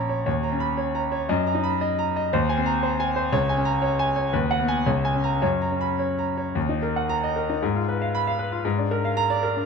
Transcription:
0.00 0.23 A#1 medium
0.00 0.28 C#4 medium
0.00 0.09 C#5 medium
0.00 0.28 A#5 medium
0.00 0.28 B5 medium
0.09 0.25 C#5 medium
0.26 1.27 D#2 medium
0.26 0.54 C#5 medium
0.43 0.71 A#5 medium
0.52 0.72 C#4 medium
0.60 0.77 B5 medium
0.77 1.05 C#5 medium
0.95 1.23 A#5 medium
1.12 1.29 C#5 medium
1.29 2.29 F#2 medium
1.29 1.57 D#5 medium
1.47 1.74 A#5 medium
1.55 1.76 D#4 medium
1.63 1.81 B5 medium
1.81 2.09 D#5 medium
1.99 2.26 A#5 medium
2.16 2.33 D#5 medium
2.33 3.30 D#2 medium
2.33 2.60 C5 medium
2.49 2.76 G#5 medium
2.57 2.78 C4 medium
2.66 2.83 A#5 medium
2.83 3.10 C5 medium
3.00 3.26 G#5 medium
3.16 3.33 C5 medium
3.32 4.30 C#2 medium
3.32 3.59 C#5 medium
3.49 3.76 G#5 medium
3.57 3.77 C#4 medium
3.65 3.82 A#5 medium
3.82 4.09 C#5 medium
3.99 4.26 G#5 medium
4.16 4.33 C#5 medium
4.33 4.85 D#2 medium
4.33 4.61 B4 medium
4.51 4.79 F#5 medium
4.59 4.81 B3 medium
4.68 4.87 G#5 medium
4.86 5.41 C#2 medium
4.86 5.16 C#5 medium
5.05 5.35 G#5 medium
5.14 5.37 C#4 medium
5.24 5.43 A#5 medium
5.42 6.52 F#2 medium
5.42 5.73 C#5 medium
5.62 5.92 A#5 medium
5.71 5.94 C#4 soft
5.81 6.00 B5 medium
5.99 6.30 C#5 medium
6.19 6.49 A#5 medium
6.38 6.56 C#5 medium
6.55 7.59 D#2 medium
6.69 6.91 D#4 medium
6.83 7.04 A#4 medium
6.96 7.18 F#5 medium
7.09 7.31 A#5 medium
7.24 7.45 D#5 medium
7.36 7.58 A#4 medium
7.49 7.63 D#4 medium
7.62 8.61 G#2 medium
7.75 7.96 F4 medium
7.88 8.09 B4 medium
8.02 8.22 F5 medium
8.15 8.34 B5 medium
8.27 8.47 F5 medium
8.39 8.59 B4 medium
8.52 8.64 F4 medium
8.65 9.65 G#2 medium
8.78 8.98 D4 medium
8.91 9.12 A#4 medium
9.05 9.25 F5 medium
9.17 9.37 A#5 medium
9.30 9.50 D5 medium
9.43 9.63 A#4 medium
9.56 9.66 D4 medium

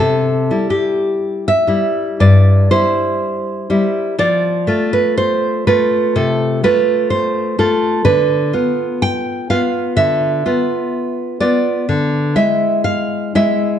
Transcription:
0.00 0.49 C3 medium
0.00 0.67 A4 medium
0.51 1.66 G3 soft
0.51 1.67 E4 medium
0.70 1.46 G4 medium
1.48 2.16 E5 medium
1.67 2.70 G3 soft
1.67 2.70 E4 medium
2.20 2.69 G2 medium
2.20 2.68 D5 medium
2.71 3.69 G3 soft
2.71 3.69 E4 medium
2.71 4.14 C5 medium
3.70 4.14 G3 medium
3.70 4.14 E4 medium
4.18 4.66 F3 medium
4.18 4.91 D5 medium
4.67 5.66 A3 soft
4.67 5.67 F4 medium
4.93 5.17 B4 medium
5.17 5.65 C5 medium
5.67 6.62 A3 medium
5.67 6.63 F4 medium
5.67 6.13 B4 medium
6.16 6.62 C3 medium
6.16 6.61 A4 medium
6.64 7.58 A3 medium
6.64 7.58 F4 medium
6.64 7.09 B4 medium
7.10 7.56 C5 medium
7.59 8.02 A3 medium
7.59 8.02 F4 medium
7.59 8.04 A4 medium
8.05 8.52 D3 medium
8.05 8.98 B4 medium
8.53 9.49 B3 medium
8.53 9.49 F4 medium
9.02 9.48 G5 loud
9.50 10.44 B3 medium
9.50 10.44 F4 medium
9.50 9.95 F5 medium
9.96 10.42 D3 medium
9.96 11.36 E5 medium
10.46 11.40 B3 medium
10.46 11.39 F4 medium
11.40 11.85 B3 soft
11.40 11.85 F4 medium
11.40 12.33 D5 medium
11.89 12.35 D3 medium
12.36 13.34 G#3 soft
12.36 13.34 E4 soft
12.36 12.83 E5 medium
12.84 13.33 F5 medium
13.35 13.79 G#3 medium
13.35 13.79 E4 medium
13.35 13.79 E5 medium

